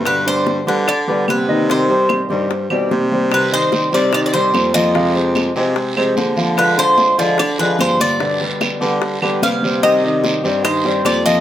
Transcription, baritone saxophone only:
\new Staff \with { instrumentName = "Baritone saxophone" } { \clef bass \time 4/4 \key c \minor \tempo 4 = 147 g,4. d4. c4~ | c4. g,4 b,8 c4~ | c4 r8 c4. f,4~ | f,4. c4 c8 d4~ |
d4. d4. g,4~ | g,4 r8 d4 d8 c4~ | c4. g,4. f,4 | }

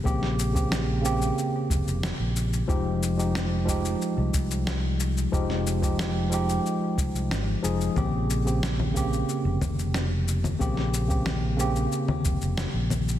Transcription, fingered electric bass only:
\new Staff \with { instrumentName = "Fingered electric bass" } { \clef bass \time 4/4 \key bes \dorian \tempo 4 = 91 bes,,2 r8 f,,16 f,,16 r16 bes,,8. | f,,2 r16 c,16 c,4. | f,,2 r8 c,16 c,16 aes,,16 r16 f,,16 r16 | bes,,2 r16 f,,16 r4. |
bes,,2 r8 f,,16 f,,16 r16 bes,,8. | }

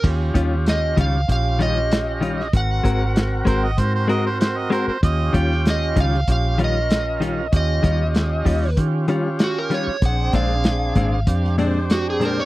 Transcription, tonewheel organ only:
\new Staff \with { instrumentName = "Tonewheel organ" } { \time 4/4 \key ees \mixolydian \tempo 4 = 96 <des' f' g'>2 <des' f' g'>8 <des' f' g'>4. | <c' ges' bes'>2 <c' ges' bes'>8 <c' ges' bes'>4. | <des' f' g'>2 <des' f' g'>8 <des' f' bes'>4. | <des' f' g'>2 <des' f' g'>8 <des' f' g'>4. |
<c' d' aes'>2 <c' d' g'>8 <c' d' g'>4. | }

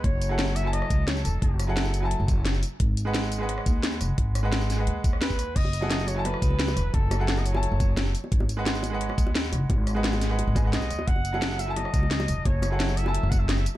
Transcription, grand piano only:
\new Staff \with { instrumentName = "Grand piano" } { \time 4/4 \key fis \dorian \tempo 4 = 174 r8. <fis e' gis' a' fis''>4 <fis e' a' gis'' a''>2~ <fis e' a' gis'' a''>16~ | <fis e' a' gis'' a''>8. <fis e' gis' a' fis''>4 <fis e' a' gis'' a''>4.~ <fis e' a' gis'' a''>16 r8 | r8. <gis gis' b' dis'' fis''>4 <gis gis' b' dis'' fis''>2~ <gis gis' b' dis'' fis''>16~ | <gis gis' b' dis'' fis''>8. <gis gis' b' dis'' fis''>4 <gis gis' b' dis'' fis''>2~ <gis gis' b' dis'' fis''>16 |
r8. <fis e' gis' a' fis''>4 <fis e' a' gis'' a''>2~ <fis e' a' gis'' a''>16~ | <fis e' a' gis'' a''>8. <fis e' gis' a' fis''>4 <fis e' a' gis'' a''>4.~ <fis e' a' gis'' a''>16 r8 | r8. <gis gis' b' dis'' fis''>4 <gis gis' b' dis'' fis''>2~ <gis gis' b' dis'' fis''>16~ | <gis gis' b' dis'' fis''>8. <gis gis' b' dis'' fis''>4 <gis gis' b' dis'' fis''>8. <gis gis' b' dis'' gis''>16 <gis gis' b' dis'' fis''>4~ <gis gis' b' dis'' fis''>16 |
r8. <fis e' gis' a' fis''>4 <fis e' a' gis'' a''>2~ <fis e' a' gis'' a''>16~ | <fis e' a' gis'' a''>8. <fis e' gis' a' fis''>4 <fis e' a' gis'' a''>4.~ <fis e' a' gis'' a''>16 r8 | }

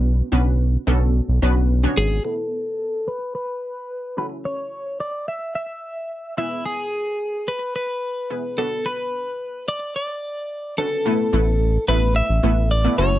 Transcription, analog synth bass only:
\new Staff \with { instrumentName = "Analog synth bass" } { \clef bass \time 4/4 \key a \major \tempo 4 = 109 b,,8 b,,4 b,,8. b,,16 b,,4 gis,,8 | r1 | r1 | r1 |
r1 | r8 a,,4 a,,8. a,,16 a,,4 fis,,8 | }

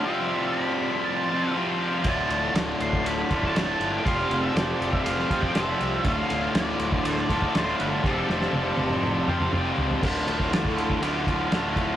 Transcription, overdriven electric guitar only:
\new Staff \with { instrumentName = "Overdriven electric guitar" } { \clef bass \time 4/4 \key f \major \tempo 4 = 120 <f, c f g c' f'>2~ <f, c f g c' f'>8 <f, c f g c' f'>8 <f, c f g c' f'>4 | <d, a, d a f'>2~ <d, a, d a f'>8 <d, a, d a f'>8 <d, a, d a f'>4 | <f, c f g c' f'>2~ <f, c f g c' f'>8 <f, c f g c' f'>8 <f, c f g c' f'>4 | <d, a, d a f'>2~ <d, a, d a f'>8 <d, a, d a f'>8 <d, a, d a f'>4 |
<f, c f g c' f'>2~ <f, c f g c' f'>8 <f, c f g c' f'>8 <f, c f g c' f'>4 | \key d \minor <d, a, d a f'>8 <d a f'>8 <a, d a f'>4 <d, a, d a f'>8 <d a f'>8 <a, d a f'>8 <d a f'>8 | }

